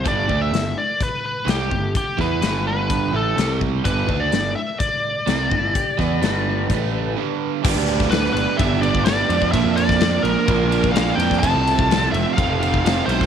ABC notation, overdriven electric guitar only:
X:1
M:4/4
L:1/8
Q:1/4=126
K:Gmix
V:1 name="Overdriven electric guitar" clef=bass
[G,,D,G,] [D,A,D] [G,,D,] z3 [C,G,C] [G,,D,] | z [E,B,E] [G,,D,G,]3 [A,,E,A,] [C,G,C]2 | [G,,D,G,] [D,A,D] [G,,D,] z3 [C,G,C] [G,,D,] | z [E,B,E] [G,,D,G,]2 [A,,E,A,]2 [G,,D,G,]2 |
[G,,D,G,B,D]2 [D,G,B,D]2 [G,,D,G,B,D] [G,B,D] [D,G,B,D] [G,B,D] | [_B,,F,_B,D]2 [B,,F,B,D]2 [B,,F,B,D] [F,B,D] [B,,F,B,D] [F,B,D] | [F,,C,F,A,C]2 [C,F,A,C]2 [F,,C,F,A,C] [F,A,C] [C,F,A,C] [F,A,C] |]